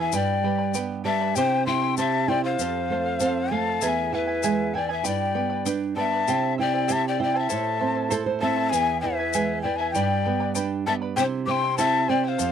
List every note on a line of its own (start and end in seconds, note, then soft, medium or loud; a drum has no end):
0.00 0.12 E3 medium
0.00 0.13 E4 soft
0.00 0.12 B4 soft
0.00 0.17 E5 medium
0.00 0.13 G#5 soft
0.00 0.18 G#5 medium
0.12 1.32 G2 medium
0.12 0.43 G4 medium
0.12 0.43 B4 medium
0.12 0.43 D5 medium
0.12 0.76 D5 medium
0.12 0.42 G5 medium
0.12 0.76 G5 medium
0.12 0.44 B5 medium
0.12 shaker loud
0.44 0.74 G3 soft
0.44 0.59 B4 medium
0.44 0.58 D5 medium
0.44 0.59 G5 medium
0.44 0.57 B5 medium
0.58 0.73 B4 soft
0.58 0.73 D5 soft
0.58 0.74 B5 soft
0.74 1.04 B3 medium
0.74 1.05 G4 medium
0.74 1.04 B4 medium
0.74 1.04 D5 medium
0.74 1.03 G5 medium
0.74 1.05 B5 medium
0.74 shaker medium
1.04 1.35 G3 medium
1.04 1.20 B4 medium
1.04 1.20 D5 medium
1.04 1.38 E5 medium
1.04 1.20 G5 medium
1.04 1.37 A5 loud
1.04 1.20 B5 medium
1.21 1.36 B4 soft
1.21 1.36 D5 soft
1.21 1.36 B5 medium
1.35 2.55 C3 medium
1.35 1.66 E4 medium
1.35 1.67 G4 medium
1.35 1.66 C5 medium
1.35 1.65 C5 medium
1.35 1.66 E5 medium
1.35 1.66 G5 loud
1.35 1.67 C6 medium
1.35 shaker medium
1.66 1.97 E4 soft
1.66 1.82 E4 medium
1.66 1.82 C5 medium
1.66 1.81 E5 medium
1.66 1.95 G5 medium
1.66 1.95 C6 loud
1.66 1.81 C6 medium
1.82 1.97 E4 soft
1.82 1.97 E5 soft
1.82 1.97 C6 medium
1.97 2.28 E4 medium
1.97 2.27 G4 medium
1.97 2.29 G4 medium
1.97 2.28 C5 medium
1.97 2.29 E5 medium
1.97 2.31 E5 medium
1.97 2.30 A5 loud
1.97 2.29 C6 medium
1.97 shaker medium
2.28 2.58 E4 medium
2.28 2.44 E4 medium
2.28 2.44 C5 medium
2.28 2.43 D5 medium
2.28 2.44 E5 medium
2.28 2.44 G5 loud
2.28 2.43 C6 medium
2.44 2.60 E4 soft
2.44 3.53 C5 medium
2.44 2.60 E5 medium
2.44 3.55 F5 medium
2.44 2.59 C6 medium
2.59 3.78 F2 medium
2.59 2.91 A4 medium
2.59 2.91 C5 medium
2.59 2.91 F5 medium
2.59 shaker medium
2.90 3.20 A3 soft
2.90 3.06 A4 medium
2.90 3.06 C5 medium
2.90 3.05 F5 medium
3.06 3.20 C5 soft
3.06 3.20 F5 medium
3.20 3.50 C4 medium
3.20 3.49 A4 medium
3.20 3.51 C5 medium
3.20 3.51 F5 loud
3.20 shaker medium
3.51 3.81 A3 medium
3.51 3.66 A4 medium
3.51 3.66 C5 medium
3.51 3.85 F5 medium
3.51 3.64 F5 medium
3.51 3.84 A5 medium
3.65 3.81 C5 soft
3.65 3.81 F5 soft
3.81 5.01 E2 medium
3.81 4.11 E4 medium
3.81 4.12 G#4 medium
3.81 4.12 B4 medium
3.81 4.11 E5 medium
3.81 4.16 E5 medium
3.81 4.13 G#5 medium
3.81 3.89 A5 medium
3.81 shaker medium
3.88 4.16 G#5 medium
4.12 4.42 E3 soft
4.12 4.27 E4 medium
4.12 4.26 B4 medium
4.12 4.78 B4 medium
4.12 4.28 E5 medium
4.12 4.75 E5 medium
4.12 4.26 G#5 medium
4.27 4.42 E4 soft
4.27 4.43 B4 soft
4.27 4.43 G#5 medium
4.43 4.73 G#3 medium
4.43 4.73 E4 medium
4.43 4.74 G#4 medium
4.43 4.74 B4 medium
4.43 4.72 E5 medium
4.43 4.74 G#5 medium
4.43 shaker medium
4.74 5.04 E3 medium
4.74 4.89 E4 medium
4.74 4.88 B4 medium
4.74 4.90 D5 medium
4.74 4.89 E5 medium
4.74 4.88 G5 medium
4.74 4.88 G#5 medium
4.89 5.04 E4 soft
4.89 5.03 B4 soft
4.89 5.09 E5 medium
4.89 5.04 G#5 medium
4.89 5.07 G#5 medium
5.03 6.24 G2 medium
5.03 5.35 G4 medium
5.03 5.34 B4 medium
5.03 5.34 D5 medium
5.03 5.33 G5 medium
5.03 5.66 G5 medium
5.03 5.34 B5 medium
5.03 shaker medium
5.07 5.67 D5 medium
5.34 5.65 B3 soft
5.34 5.50 B4 medium
5.34 5.49 D5 medium
5.34 5.50 G5 medium
5.34 5.48 B5 medium
5.50 5.65 B4 soft
5.50 5.65 D5 medium
5.50 5.65 B5 soft
5.66 5.96 D4 medium
5.66 5.96 G4 medium
5.66 5.95 B4 medium
5.66 5.96 D5 medium
5.66 5.95 G5 medium
5.66 5.96 B5 medium
5.66 shaker medium
5.96 6.26 B3 medium
5.96 6.12 B4 medium
5.96 6.12 D5 medium
5.96 6.55 E5 medium
5.96 6.12 G5 medium
5.96 6.54 A5 loud
5.96 6.11 B5 medium
6.12 6.28 B4 soft
6.12 6.28 D5 soft
6.12 6.27 B5 soft
6.28 7.47 C3 medium
6.28 6.57 E4 medium
6.28 6.58 G4 medium
6.28 6.58 C5 medium
6.28 6.57 E5 medium
6.28 6.58 G5 medium
6.28 shaker medium
6.58 6.73 E4 medium
6.58 6.88 E4 soft
6.58 6.72 C5 medium
6.58 6.95 D5 medium
6.58 6.73 E5 medium
6.58 6.72 G5 medium
6.58 6.94 G5 medium
6.73 6.87 E4 soft
6.73 6.87 C5 soft
6.73 6.88 G5 soft
6.88 7.18 E4 medium
6.88 7.19 G4 medium
6.88 7.18 C5 medium
6.88 7.17 E5 medium
6.88 7.19 G5 medium
6.88 shaker medium
6.92 7.06 E5 medium
6.92 7.06 A5 loud
7.08 7.20 D5 medium
7.08 7.21 G5 medium
7.18 7.34 E4 medium
7.18 7.49 E4 medium
7.18 7.34 C5 medium
7.18 7.34 E5 medium
7.18 7.33 G5 medium
7.18 7.38 G5 medium
7.24 7.40 D5 medium
7.34 7.48 E4 soft
7.34 7.48 C5 medium
7.34 7.50 G5 medium
7.34 8.12 A5 medium
7.39 8.13 E5 medium
7.49 8.69 A2 medium
7.49 7.80 E4 medium
7.49 7.79 A4 medium
7.49 7.79 C5 medium
7.49 7.78 E5 medium
7.49 7.79 A5 medium
7.49 shaker medium
7.80 8.11 C4 soft
7.80 7.95 E4 medium
7.80 7.94 C5 medium
7.80 7.95 E5 medium
7.80 7.94 A5 medium
7.95 8.09 E4 soft
7.95 8.09 C5 soft
7.95 8.10 A5 medium
8.10 8.40 E4 medium
8.10 8.41 E4 medium
8.10 8.40 A4 medium
8.10 8.26 A4 medium
8.10 8.40 C5 loud
8.10 8.39 E5 medium
8.10 8.40 A5 medium
8.10 shaker medium
8.26 8.40 C5 medium
8.40 8.72 C4 medium
8.40 8.57 E4 medium
8.40 8.56 C5 medium
8.40 8.56 E5 medium
8.40 8.71 E5 medium
8.40 8.72 E5 medium
8.40 8.71 A5 loud
8.40 8.55 A5 medium
8.57 8.71 E4 soft
8.57 8.71 C5 medium
8.57 8.72 A5 medium
8.70 9.91 E2 medium
8.70 9.02 E4 medium
8.70 9.02 G#4 medium
8.70 9.02 B4 medium
8.70 9.01 E5 medium
8.70 9.00 G#5 loud
8.70 9.03 G#5 medium
8.70 shaker medium
9.01 9.33 E3 medium
9.01 9.18 E4 medium
9.01 9.60 B4 medium
9.01 9.19 B4 medium
9.01 9.59 E5 medium
9.01 9.18 E5 medium
9.01 9.18 G#5 medium
9.19 9.34 E4 soft
9.19 9.34 B4 soft
9.19 9.34 G#5 medium
9.33 9.64 G#3 medium
9.33 9.63 E4 medium
9.33 9.65 G#4 medium
9.33 9.64 B4 medium
9.33 9.63 E5 medium
9.33 9.64 G#5 medium
9.33 shaker loud
9.62 9.94 E3 medium
9.62 9.80 E4 medium
9.62 9.79 B4 medium
9.62 9.79 D5 medium
9.62 9.79 E5 medium
9.62 9.78 G5 medium
9.62 9.79 G#5 medium
9.76 9.94 E5 medium
9.76 9.90 G#5 medium
9.80 9.95 E4 soft
9.80 9.94 B4 medium
9.80 9.95 G#5 medium
9.91 10.25 G4 medium
9.91 10.52 D5 medium
9.91 10.50 G5 medium
9.91 10.23 G5 medium
9.91 shaker medium
9.95 11.14 G2 medium
9.95 10.24 B4 medium
9.95 10.24 D5 medium
9.95 10.25 B5 medium
10.25 10.56 B3 medium
10.25 10.40 B4 medium
10.25 10.40 D5 medium
10.25 10.40 G5 medium
10.25 10.39 B5 medium
10.40 10.54 B4 soft
10.40 10.54 D5 medium
10.40 10.54 B5 medium
10.55 10.86 D4 medium
10.55 10.86 G4 medium
10.55 10.86 B4 medium
10.55 10.86 D5 medium
10.55 10.85 G5 medium
10.55 10.86 B5 medium
10.55 shaker medium
10.86 11.17 B3 medium
10.86 11.01 B4 medium
10.86 11.00 D5 medium
10.86 10.95 E5 medium
10.86 11.01 G5 medium
10.86 10.93 A5 loud
10.86 11.00 B5 medium
11.02 11.16 B4 soft
11.02 11.17 D5 medium
11.02 11.17 B5 medium
11.16 12.36 C3 medium
11.16 11.48 E4 medium
11.16 11.47 G4 medium
11.16 11.47 C5 medium
11.16 11.26 C5 medium
11.16 11.48 E5 medium
11.16 11.23 G5 loud
11.16 11.48 C6 medium
11.16 shaker medium
11.46 11.77 C4 medium
11.46 11.63 E4 medium
11.46 11.63 C5 medium
11.46 11.63 E5 medium
11.46 11.77 G5 medium
11.46 11.62 C6 medium
11.46 11.52 D6 medium
11.51 11.75 C6 loud
11.64 11.77 E4 soft
11.64 11.78 E5 soft
11.64 11.77 C6 soft
11.78 12.08 E4 medium
11.78 12.07 E4 medium
11.78 12.09 G4 medium
11.78 12.07 C5 medium
11.78 12.08 E5 medium
11.78 12.11 E5 medium
11.78 12.11 A5 loud
11.78 12.08 C6 medium
11.78 shaker medium
12.08 12.39 C4 medium
12.08 12.24 E4 medium
12.08 12.24 C5 medium
12.08 12.27 D5 medium
12.08 12.24 E5 medium
12.08 12.25 G5 medium
12.08 12.23 C6 medium
12.24 12.38 E4 soft
12.24 12.52 C5 medium
12.24 12.40 E5 medium
12.24 12.30 G5 medium
12.24 12.39 C6 medium
12.29 12.52 F5 medium
12.38 12.52 F2 medium
12.38 12.52 A4 medium
12.38 12.52 C5 medium
12.38 12.52 F5 medium
12.38 shaker medium